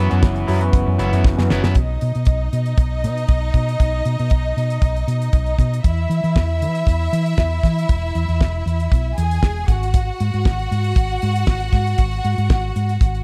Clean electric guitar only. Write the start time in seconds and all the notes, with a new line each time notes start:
0.09 F#3 B3 E4
0.35 muted clean electric guitar stroke
0.47 F#3 B3 E4
0.61 muted clean electric guitar stroke
0.73 muted clean electric guitar stroke
0.87 muted clean electric guitar stroke
0.99 F#3 B3 E4
1.12 F#3 B3 E4
1.26 muted clean electric guitar stroke
1.39 muted clean electric guitar stroke
1.50 F#3 B3 E4
1.64 F#3 B3 E4